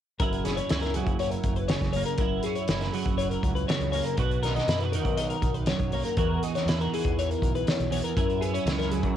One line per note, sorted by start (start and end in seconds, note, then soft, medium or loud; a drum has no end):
0.19 0.60 F#1 medium
0.19 2.17 F#2 medium
0.19 0.70 E4 medium
0.19 0.44 A#4 medium
0.19 kick loud
0.19 closed hi-hat medium
0.33 closed hi-hat soft
0.44 2.16 C#4 medium
0.44 0.56 G#4 medium
0.44 snare soft
0.44 closed hi-hat medium
0.57 0.81 C#5 medium
0.57 closed hi-hat soft
0.69 1.07 C#2 medium
0.69 2.19 E4 medium
0.69 snare medium
0.69 closed hi-hat medium
0.82 0.94 A#4 medium
0.82 snare soft
0.82 closed hi-hat soft
0.94 2.24 F#3 medium
0.94 1.19 G#4 medium
0.94 closed hi-hat medium
1.07 1.37 F#1 medium
1.07 kick medium
1.07 closed hi-hat soft
1.19 1.31 C#5 medium
1.19 closed hi-hat medium
1.31 1.56 A#4 medium
1.31 closed hi-hat soft
1.44 1.74 F#1 medium
1.44 kick medium
1.44 closed hi-hat medium
1.56 1.68 B4 medium
1.56 closed hi-hat soft
1.68 2.16 C#3 medium
1.68 1.91 C#5 medium
1.68 snare loud
1.68 closed hi-hat medium
1.81 2.01 F#1 medium
1.81 kick medium
1.81 snare soft
1.81 closed hi-hat soft
1.93 2.24 A#3 soft
1.93 2.05 C#5 medium
1.93 open hi-hat medium
2.05 2.17 A#4 medium
2.05 closed hi-hat soft
2.18 2.39 F#1 medium
2.18 4.16 F#2 medium
2.18 2.69 E4 medium
2.18 2.43 A#4 medium
2.18 kick medium
2.18 closed hi-hat medium
2.43 4.16 C#4 medium
2.43 2.56 G#4 medium
2.43 closed hi-hat medium
2.56 2.81 C#5 medium
2.56 closed hi-hat soft
2.68 2.89 F#1 medium
2.68 4.19 E4 medium
2.68 snare medium
2.68 closed hi-hat medium
2.81 2.93 A#4 medium
2.81 snare soft
2.81 closed hi-hat soft
2.93 4.72 F#3 medium
2.93 3.18 G#4 medium
2.93 open hi-hat medium
3.06 3.36 F#1 medium
3.06 kick medium
3.06 closed hi-hat soft
3.18 3.30 C#5 medium
3.18 closed hi-hat medium
3.30 3.55 A#4 medium
3.30 closed hi-hat soft
3.43 3.63 C#2 medium
3.43 kick medium
3.43 closed hi-hat soft
3.55 3.68 B4 medium
3.55 closed hi-hat soft
3.68 4.15 C#3 medium
3.68 3.91 C#5 medium
3.68 snare medium
3.68 closed hi-hat medium
3.80 4.00 C#2 medium
3.80 closed hi-hat soft
3.92 4.16 A#3 soft
3.92 4.05 C#5 medium
3.92 open hi-hat medium
4.05 4.17 A#4 medium
4.05 closed hi-hat soft
4.17 4.58 B1 medium
4.17 4.93 B2 medium
4.17 4.69 F#4 medium
4.17 4.42 B4 medium
4.17 kick medium
4.17 closed hi-hat medium
4.31 closed hi-hat soft
4.43 6.15 D#4 medium
4.43 4.55 A#4 medium
4.43 snare soft
4.43 closed hi-hat medium
4.56 4.79 D#5 medium
4.56 snare soft
4.56 closed hi-hat soft
4.68 5.05 F#2 medium
4.68 4.84 E4 medium
4.68 snare medium
4.68 closed hi-hat medium
4.79 4.92 B4 medium
4.79 closed hi-hat soft
4.84 6.17 F#4 soft
4.92 6.15 D#3 medium
4.92 5.17 A#4 medium
4.92 closed hi-hat medium
5.05 5.35 B1 medium
5.05 kick medium
5.05 closed hi-hat soft
5.17 5.29 D#5 medium
5.17 closed hi-hat medium
5.30 5.54 A#4 medium
5.30 closed hi-hat soft
5.42 5.72 B1 medium
5.42 kick medium
5.42 closed hi-hat medium
5.54 5.67 B4 medium
5.54 closed hi-hat soft
5.66 6.15 F#2 medium
5.66 5.92 C#5 medium
5.66 snare medium
5.66 closed hi-hat medium
5.80 6.00 B1 medium
5.80 kick medium
5.80 closed hi-hat soft
5.92 6.15 A#3 soft
5.92 6.05 C#5 medium
5.92 open hi-hat medium
6.05 6.16 A#4 medium
6.05 closed hi-hat soft
6.17 6.38 E2 medium
6.17 7.90 E2 medium
6.17 6.68 F#4 medium
6.17 6.43 A#4 medium
6.17 kick medium
6.17 closed hi-hat medium
6.43 8.14 D#4 soft
6.43 6.55 G#4 medium
6.43 closed hi-hat medium
6.55 6.80 C#5 medium
6.55 snare soft
6.55 closed hi-hat soft
6.65 6.86 E2 medium
6.65 6.81 E4 medium
6.65 snare medium
6.65 closed hi-hat medium
6.81 8.17 F#4 soft
6.81 6.92 A#4 medium
6.81 closed hi-hat soft
6.93 8.20 E3 medium
6.93 7.18 G#4 medium
6.93 open hi-hat medium
7.05 7.35 E2 medium
7.05 kick medium
7.05 closed hi-hat soft
7.19 7.30 C#5 medium
7.19 closed hi-hat medium
7.30 7.54 A#4 medium
7.30 closed hi-hat soft
7.42 7.62 B1 medium
7.42 kick medium
7.42 closed hi-hat soft
7.55 7.68 B4 medium
7.55 closed hi-hat soft
7.67 7.91 C#5 medium
7.67 snare medium
7.67 closed hi-hat medium
7.79 7.99 B1 medium
7.79 closed hi-hat soft
7.91 8.16 E2 medium
7.91 8.03 C#5 medium
7.91 open hi-hat medium
8.04 8.16 A#4 medium
8.04 closed hi-hat soft
8.17 9.17 F#2 medium
8.17 8.57 F#2 medium
8.17 8.66 E4 medium
8.17 8.42 A#4 medium
8.17 kick medium
8.17 closed hi-hat medium
8.30 closed hi-hat soft
8.41 8.54 B3 soft
8.41 8.53 G#4 medium
8.41 closed hi-hat medium
8.54 9.17 C#4 soft
8.54 8.78 C#5 medium
8.54 closed hi-hat soft
8.66 9.04 C#2 medium
8.66 9.17 E4 medium
8.66 snare medium
8.66 closed hi-hat medium
8.79 8.91 A#4 medium
8.79 snare soft
8.79 closed hi-hat soft
8.91 9.17 F#3 medium
8.91 9.16 G#4 medium
8.91 closed hi-hat medium
9.03 9.17 F#2 medium
9.03 kick medium
9.03 closed hi-hat soft